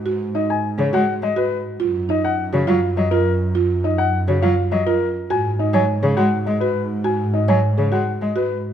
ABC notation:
X:1
M:3/4
L:1/16
Q:1/4=103
K:G#dor
V:1 name="Grand piano"
z2 d g z c f z d B z2 | z2 d f z c e z d A z2 | z2 d f z c e z d A z2 | g z d g z c f z d B z2 |
g z d g z c f z d B z2 |]
V:2 name="Marimba"
F z D z2 G F z2 F z2 | E z D z2 F E z2 E z2 | E z D z2 F E z2 E z2 | F z D c z G F z2 F z2 |
F z D c z G F z2 F z2 |]
V:3 name="Cello" clef=bass
z4 z C, G, z G, z3 | z4 z C, F, z F, z3 | z4 z C, F, z F, z3 | z3 F, z C, G, z G, z3 |
z3 F, z C, G, z G, z3 |]
V:4 name="Double bass section" clef=bass
G,,12 | F,,12- | F,,12 | G,,12- |
G,,12 |]